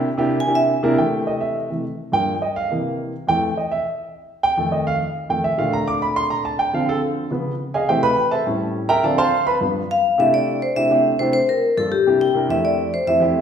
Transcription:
0.18 0.38 C3 medium
0.18 0.38 A#3 medium
0.18 0.38 D4 medium
0.18 0.39 E4 medium
0.18 0.39 G4 loud
0.40 0.54 G#5 loud
0.47 0.72 C3 medium
0.47 0.72 A#3 medium
0.47 0.72 D4 medium
0.47 0.73 E4 medium
0.47 0.73 G4 medium
0.55 0.64 E5 medium
0.83 0.96 C3 medium
0.83 0.98 A#3 medium
0.83 0.98 D4 medium
0.83 0.98 E4 medium
0.83 0.98 A#4 loud
0.97 1.68 C3 medium
0.97 1.69 E3 medium
0.97 1.69 A3 medium
0.97 1.25 G5 medium
1.27 1.41 D#5 medium
1.41 1.55 E5 medium
1.70 1.83 C3 soft
1.70 1.83 E3 soft
1.70 1.83 A3 medium
2.12 2.32 G2 medium
2.12 2.32 F3 medium
2.12 2.32 A#3 medium
2.12 2.40 G5 loud
2.42 2.56 D#5 medium
2.56 2.70 F5 medium
2.70 3.11 C3 medium
2.70 3.12 E3 medium
2.70 3.12 A#3 medium
3.27 3.47 F2 medium
3.27 3.47 E3 medium
3.27 3.48 A3 medium
3.27 3.55 G5 loud
3.57 3.71 D#5 medium
3.71 3.85 E5 medium
4.43 4.70 G5 loud
4.57 4.99 F2 medium
4.57 4.99 D#3 medium
4.57 4.99 A3 medium
4.72 4.86 D#5 medium
4.87 4.95 F5 loud
5.29 5.42 F2 medium
5.29 5.43 D#3 soft
5.29 5.43 A3 medium
5.29 5.44 G5 medium
5.44 5.58 E5 medium
5.58 6.69 A#2 medium
5.58 6.70 D3 medium
5.58 6.70 A3 medium
5.58 5.73 F5 medium
5.73 5.87 A#5 loud
5.88 6.01 D6 loud
6.02 6.16 B5 loud
6.16 6.30 C6 loud
6.30 6.44 A#5 loud
6.45 6.59 A5 medium
6.59 6.73 G5 loud
6.73 7.28 D3 medium
6.73 7.29 F3 medium
6.73 7.29 C4 medium
6.73 6.88 F5 medium
6.89 6.97 A4 loud
7.31 7.50 C#3 medium
7.31 7.50 F3 medium
7.31 7.51 B3 medium
7.74 7.88 G#4 medium
7.74 7.89 D#5 medium
7.74 7.89 F5 medium
7.74 7.88 G#5 medium
7.88 8.08 C3 medium
7.88 8.08 E3 medium
7.88 8.08 A3 medium
7.88 8.03 G4 medium
7.88 8.03 C5 medium
7.88 8.03 E5 medium
7.88 8.03 G5 medium
8.03 8.30 B4 medium
8.03 8.30 B5 loud
8.31 8.46 A4 medium
8.31 8.46 C5 medium
8.31 8.46 E5 medium
8.31 8.46 A5 medium
8.46 8.87 A2 medium
8.46 8.87 G3 medium
8.46 8.88 C#4 medium
8.89 9.03 A#4 medium
8.89 9.03 E5 medium
8.89 9.03 G5 loud
8.89 9.03 A#5 loud
9.03 9.22 D3 medium
9.03 9.23 F3 medium
9.03 9.23 C4 medium
9.03 9.18 A4 medium
9.03 9.18 D5 medium
9.03 9.17 F5 medium
9.03 9.17 A5 medium
9.18 9.45 C5 loud
9.18 9.45 F5 loud
9.18 9.45 A5 loud
9.18 9.45 C6 loud
9.47 9.56 B4 medium
9.47 9.55 B5 loud
9.61 9.80 G2 medium
9.61 9.80 F3 medium
9.61 9.81 B3 medium
9.91 10.20 F5 loud
10.18 10.59 C3 medium
10.18 10.59 A3 medium
10.18 10.59 D4 medium
10.18 10.59 E4 medium
10.18 10.59 G4 medium
10.18 10.34 E5 medium
10.34 10.60 D5 medium
10.62 10.76 C5 medium
10.76 10.86 C3 medium
10.76 10.86 A3 medium
10.76 10.86 D4 medium
10.76 10.86 E4 medium
10.76 10.87 G4 medium
10.76 11.17 E5 medium
10.90 11.11 C3 medium
10.90 11.11 A3 medium
10.90 11.11 D4 medium
10.90 11.11 E4 medium
10.90 11.11 G4 medium
11.19 11.34 C3 medium
11.19 11.34 A3 medium
11.19 11.34 D4 medium
11.19 11.34 E4 medium
11.19 11.35 G4 medium
11.19 11.32 C5 medium
11.33 11.47 C5 loud
11.49 11.76 A#4 medium
11.77 11.92 G2 medium
11.77 11.92 A#3 medium
11.77 11.92 D4 medium
11.77 11.92 F4 medium
11.77 11.92 A4 medium
11.92 12.21 G4 medium
12.07 12.27 C3 medium
12.07 12.27 A#3 medium
12.07 12.27 D4 medium
12.07 12.27 E4 medium
12.07 12.27 G4 medium
12.21 12.48 G5 loud
12.34 12.45 C3 medium
12.34 12.45 A#3 medium
12.34 12.45 D4 medium
12.34 12.45 E4 medium
12.34 12.45 A#4 medium
12.49 12.89 F2 medium
12.49 12.90 A3 medium
12.49 12.90 C4 medium
12.49 12.90 E4 medium
12.49 12.90 G4 medium
12.49 12.57 E5 loud
12.65 12.91 D5 medium
12.94 13.00 C5 medium
13.07 13.17 F2 medium
13.07 13.17 A3 medium
13.07 13.17 C4 medium
13.07 13.17 E4 medium
13.07 13.17 G4 medium
13.07 13.41 E5 loud
13.20 13.41 F2 medium
13.20 13.41 A3 medium
13.20 13.41 C4 medium
13.20 13.41 E4 medium
13.20 13.41 G4 medium

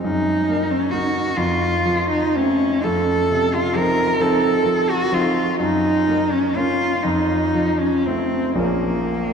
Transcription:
0.03 1.33 F#2 soft
0.03 0.72 D#4 medium
0.49 0.91 A#3 soft
0.71 0.93 C#4 medium
0.91 1.33 A#3 soft
0.91 1.33 D#4 soft
0.91 1.39 F#4 medium
1.37 2.81 F2 soft
1.37 2.10 F4 medium
1.86 2.66 F3 soft
2.11 2.37 D#4 medium
2.36 2.81 A3 soft
2.36 2.81 C4 soft
2.36 2.86 C#4 medium
2.84 5.56 F2 soft
2.84 3.56 A4 medium
3.31 4.03 C3 soft
3.55 3.77 F4 medium
3.76 4.17 F3 soft
3.76 4.17 C4 soft
3.76 4.17 D#4 soft
3.76 4.23 A#4 medium
4.20 4.62 F3 soft
4.20 4.62 C4 soft
4.20 4.62 D#4 soft
4.20 4.92 A4 medium
4.66 5.10 F3 soft
4.90 5.15 F#4 medium
5.12 5.55 F3 soft
5.12 5.56 C4 soft
5.12 5.56 D#4 soft
5.12 5.60 F4 medium
5.60 7.00 F#2 medium
5.60 6.33 D#4 medium
6.08 6.55 A#3 soft
6.32 6.57 C#4 medium
6.56 7.01 A#3 soft
6.56 7.01 C#4 soft
6.56 7.05 F4 medium
7.03 8.56 F2 medium
7.03 7.82 D#4 medium
7.55 8.39 F3 soft
7.80 8.08 C#4 medium
8.06 8.57 A3 soft
8.06 8.60 C4 medium
8.06 8.57 C4 soft
8.55 9.33 A#1 soft
8.55 9.33 F3 soft
8.55 9.33 A#3 soft
8.55 9.33 C#4 soft
8.60 9.33 A#3 medium

